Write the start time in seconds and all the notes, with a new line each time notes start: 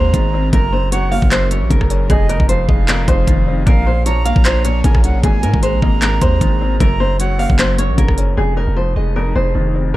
Already playing: D#2 G#2 G#3 A#3 C4 G#4 C5 A#5
0.14 G#1 D#3, kick, closed hi-hat
0.34 C4
0.53 F#1 F#2 F#3 C#4 A#4 A#5, kick, closed hi-hat
0.72 F#2 C5
0.92 F#3 C#5 F#5, closed hi-hat
1.11 A#3 F5, open hi-hat
1.22 F#1, kick
1.31 F#2 C5, clap, closed hi-hat
1.51 F#2 C#5, closed hi-hat
1.61 A#1
1.70 F#1 C#3 A#4, kick, closed hi-hat
1.81 kick, cross-stick
1.90 C#4, closed hi-hat
2.10 F1 F2 F3 D#4 G#4 D#5, kick, closed hi-hat
2.29 F2 A#4, closed hi-hat
2.40 F1, kick
2.49 F3 C5 F5, closed hi-hat
2.68 F1 G#3 D#5, kick
2.88 F2 A#4, clap, closed hi-hat
3.08 F1 F2 C5, kick, closed hi-hat
3.27 F1 D#3, kick, closed hi-hat
3.47 C4
3.66 A#1 A#2 A#3 F4 A#4 C#5 F5, kick, closed hi-hat
3.86 A#2 C5
4.06 F3 C#5 A#5, closed hi-hat
4.25 A#3 F5, closed hi-hat
4.36 A#1, kick
4.45 A#2 C5, clap, closed hi-hat
4.64 A#2 C#5, closed hi-hat
4.84 A#1 C#3 A#4 G#5, kick, closed hi-hat
4.95 kick, cross-stick
5.03 C2 C#4 F#5, closed hi-hat
5.14 A#1
5.23 G#1 G#2 C4 G#4 G#5, kick, closed hi-hat
5.42 G#2 A#4, closed hi-hat
5.54 G#1, kick
5.62 G#3 C5 A#5, closed hi-hat
5.73 A#1
5.82 G#1 A#3 D#5, kick
6.02 G#2 A#4, clap, closed hi-hat
6.21 D#2 G#2 C5, kick, closed hi-hat
6.41 G#1 D#3, kick, closed hi-hat
6.61 C4
6.80 F#1 F#2 F#3 C#4 A#4 A#5, kick, closed hi-hat
7.00 F#2 C5
7.19 F#3 C#5 F#5, closed hi-hat
7.39 A#3 F5, open hi-hat
7.50 F#1, kick
7.59 F#2 C5, clap, closed hi-hat
7.78 F#2 C#5, closed hi-hat
7.89 A#1
7.97 F#1 C#3 A#4, kick, closed hi-hat
8.08 kick, cross-stick
8.18 C#4, closed hi-hat
8.37 F1 F2 F3 D#4 G#4
8.57 F2 A#4
8.67 F1
8.76 F3 C5
8.96 F1 G#3 D#5
9.16 F2 A#4
9.35 F1 F2 C5
9.55 F1 D#3
9.75 C4
9.94 A#2